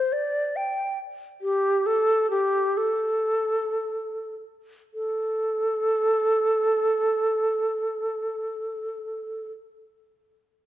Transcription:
Already playing: C5
0.13 D5
0.56 G5
1.42 G4
1.86 A4
2.30 G4
2.77 A4
4.94 A4

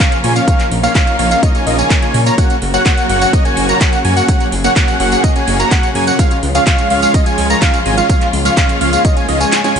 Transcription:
Already playing: C#3 F3 A#3 F4
0.00 A#3 C#4 F4 F5, clap, closed hi-hat, tambourine
0.12 closed hi-hat, tambourine
0.24 A#2 A#3 C#4 F4 C#5 G#5, open hi-hat
0.36 A#3 C#4 F4 C#5 F5, closed hi-hat, tambourine
0.48 A#3 C#4 D#4 F4 C#5 F5, kick, closed hi-hat, tambourine
0.60 clap, closed hi-hat, tambourine
0.72 A#1, open hi-hat
0.83 A#3 C#4 F4 C#5 F5, closed hi-hat, tambourine
0.95 A#3 C#4 F4 C#5 F5, kick, clap, closed hi-hat, tambourine
1.07 closed hi-hat, tambourine
1.19 A#1 A#3 C#4 F4 C#5 F5, open hi-hat
1.31 A#3 C#4 F4 C#5 F5, closed hi-hat, tambourine
1.43 A#3 C#4 F4 C#5 D#5, kick, closed hi-hat, tambourine
1.55 A#3 C#4 F4 C#5 G#5, closed hi-hat, tambourine
1.67 A#1 A#3 C#4 F4 C#5 D#5, open hi-hat
1.79 A#3 C#4 F4 C#5 G#5, closed hi-hat, tambourine
1.90 kick, clap, closed hi-hat, tambourine
2.02 A#3 C#4 F4 C#5 G#5, closed hi-hat, tambourine
2.14 A#2, open hi-hat
2.26 A#3 C#4 F4 C#5 A#5, closed hi-hat, tambourine
2.38 F#3 A#3 F#4 F#5, kick, closed hi-hat, tambourine
2.50 closed hi-hat, tambourine
2.62 F#1, open hi-hat
2.74 A#3 C#4 F#4 C#5 F#5, closed hi-hat, tambourine
2.86 A#3 F#4 F#5, kick, clap, closed hi-hat, tambourine
2.98 closed hi-hat, tambourine
3.09 F#1 A#3 C#4 F#4 C#5 F#5, open hi-hat
3.21 A#3 C#4 F#4 C#5 F#5, closed hi-hat, tambourine
3.33 A#3 C#4 F#4 C#5 D#5, kick, closed hi-hat, tambourine
3.45 A#3 C#4 F#4 C#5 G#5, closed hi-hat, tambourine
3.57 F#1, open hi-hat
3.69 A#3 C#4 F#4 C#5 A#5, closed hi-hat, tambourine
3.81 A#3 C#4 F#4 C#5 F#5, kick, clap, closed hi-hat, tambourine
3.93 closed hi-hat, tambourine
4.05 F#2 A#3 C#4 F#4 C#5 G#5, open hi-hat
4.17 A#3 C#4 F#4 C#5 F#5, closed hi-hat, tambourine
4.28 A#3 C#4 F#4 G#4 C#5 F#5, kick, closed hi-hat, tambourine
4.40 closed hi-hat, tambourine
4.52 F#1, open hi-hat
4.64 A#3 C#4 F#4 C#5 F#5, closed hi-hat, tambourine
4.76 A#3 C#4 F#4 C#5 F#5, kick, clap, closed hi-hat, tambourine
4.88 closed hi-hat, tambourine
5.00 F#1 A#3 C#4 F#4 C#5 F#5, open hi-hat
5.12 A#3 C#4 F#4 C#5 F#5, closed hi-hat, tambourine
5.24 A#3 C#4 F#4 C#5 D#5, kick, closed hi-hat, tambourine
5.36 A#3 C#4 F#4 C#5 G#5, closed hi-hat, tambourine
5.48 F#1, open hi-hat
5.59 A#3 C#4 F#4 C#5 A#5, closed hi-hat, tambourine
5.71 A#3 C#4 F#4 C#5 F#5, kick, clap, closed hi-hat, tambourine
5.83 closed hi-hat, tambourine
5.95 F#2 A#3 C#4 F#4 C#5 G#5, open hi-hat
6.07 A#3 C#4 F#4 C#5 F#5, closed hi-hat, tambourine
6.19 F3 G#3 C#4 F4 C#5 F5, kick, closed hi-hat, tambourine
6.31 closed hi-hat, tambourine
6.43 C#2, open hi-hat
6.55 G#3 C#4 F4 C#5 F5, closed hi-hat, tambourine
6.67 C#4 F4 C#5 F5, kick, clap, closed hi-hat, tambourine
6.79 closed hi-hat, tambourine
6.90 C#2 G#3 C#4 F4 C#5 F5, open hi-hat
7.02 G#3 C#4 F4 C#5 F5, closed hi-hat, tambourine
7.14 G#3 C#4 F4 C#5 D#5, kick, closed hi-hat, tambourine
7.26 G#3 C#4 F4 C#5 G#5, closed hi-hat, tambourine
7.38 C#2, open hi-hat
7.50 G#3 C#4 F4 C#5 A#5, closed hi-hat, tambourine
7.62 G#3 C#4 F4 C#5 F5, kick, clap, closed hi-hat, tambourine
7.74 closed hi-hat, tambourine
7.86 G#1 G#3 C#4 F4 C#5 G#5, open hi-hat
7.98 G#3 C#4 F4 C#5 F5, closed hi-hat, tambourine
8.09 A#3 F4 C#5 F5, kick, closed hi-hat, tambourine
8.21 clap, closed hi-hat, tambourine
8.33 C#2, open hi-hat
8.45 G#3 C#4 F4 C#5 F5, closed hi-hat, tambourine
8.57 G#3 C#4 F4 F5, kick, clap, closed hi-hat, tambourine
8.69 closed hi-hat, tambourine
8.81 C#2 G#3 C#4 F4 C#5 F5, open hi-hat
8.93 G#3 C#4 F4 C#5 F5, closed hi-hat, tambourine
9.05 G#3 C#4 F4 C#5 D#5, kick, closed hi-hat, tambourine
9.17 G#3 C#4 F4 C#5 G#5, closed hi-hat, tambourine
9.28 C#2 G#3 C#4 F4 C#5 D#5, open hi-hat
9.40 G#3 C#4 F4 C#5 G#5, closed hi-hat, tambourine
9.52 snare, clap, closed hi-hat, tambourine
9.64 G#3 C#4 F4 C#5 G#5, snare, closed hi-hat, tambourine
9.76 C#2, open hi-hat

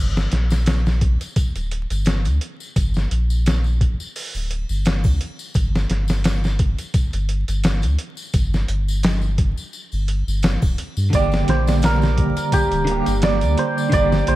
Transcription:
Already playing: G1
0.16 snare, tambourine
0.32 A#1, snare, closed hi-hat
0.50 snare, tambourine, triangle
0.66 snare, closed hi-hat, tambourine
0.86 snare, tambourine
1.01 kick, closed hi-hat
1.21 closed hi-hat, tambourine
1.36 kick, closed hi-hat, tambourine
1.56 D1, closed hi-hat, tambourine
1.71 closed hi-hat
1.90 G1, closed hi-hat, tambourine
2.05 snare, closed hi-hat, tambourine
2.25 D2, closed hi-hat, tambourine
2.41 closed hi-hat
2.60 tambourine
2.76 G1, kick, closed hi-hat, tambourine
2.94 snare, tambourine
3.11 A#1, closed hi-hat
3.30 tambourine
3.46 snare, closed hi-hat, tambourine
3.64 tambourine
3.81 kick, closed hi-hat
4.00 tambourine
4.16 open hi-hat, tambourine
4.35 D1, tambourine, triangle
4.51 closed hi-hat
4.69 G1, tambourine
4.85 snare, closed hi-hat, tambourine
5.04 D2, kick, tambourine, triangle
5.21 closed hi-hat
5.39 tambourine
5.54 G1, kick, closed hi-hat, tambourine
5.75 snare, tambourine
5.90 G1, snare, closed hi-hat
6.08 snare, tambourine, triangle
6.24 snare, closed hi-hat, tambourine
6.44 snare, tambourine
6.59 kick, closed hi-hat
6.78 closed hi-hat, tambourine
6.94 kick, closed hi-hat, tambourine
7.13 G1, closed hi-hat, tambourine
7.29 closed hi-hat
7.48 G1, closed hi-hat, tambourine
7.64 snare, closed hi-hat, tambourine
7.82 D2, closed hi-hat, tambourine
7.99 closed hi-hat
8.17 tambourine
8.33 G1, kick, closed hi-hat, tambourine
8.54 snare, tambourine
8.68 G1, closed hi-hat
8.88 tambourine
9.03 snare, closed hi-hat, tambourine
9.22 tambourine
9.38 kick, closed hi-hat
9.58 tambourine
9.73 tambourine
9.92 G1, tambourine, triangle
10.08 closed hi-hat
10.28 G1, tambourine
10.42 snare, closed hi-hat, tambourine
10.62 D1, kick, tambourine, triangle
10.78 closed hi-hat
10.97 G2, tambourine
11.10 G1 D3 G3, kick, closed hi-hat, tambourine
11.14 A#3 G4 D5
11.32 snare, tambourine
11.48 A#1 C5, snare, closed hi-hat
11.67 snare, tambourine, triangle
11.82 A#4, snare, closed hi-hat, tambourine
12.02 snare, tambourine
12.18 kick, closed hi-hat
12.37 closed hi-hat, tambourine
12.52 G4, kick, closed hi-hat, tambourine
12.72 D1, closed hi-hat, tambourine
12.85 D3 G3, closed hi-hat
12.89 A#3 G4
13.06 G1, closed hi-hat, tambourine
13.22 D5, snare, closed hi-hat, tambourine
13.41 D2, closed hi-hat, tambourine
13.58 C5, closed hi-hat
13.78 tambourine
13.90 G1 D3 G3 D5, kick, closed hi-hat, tambourine
13.94 A#3 G4
14.12 snare, tambourine
14.27 A#1 C5, closed hi-hat

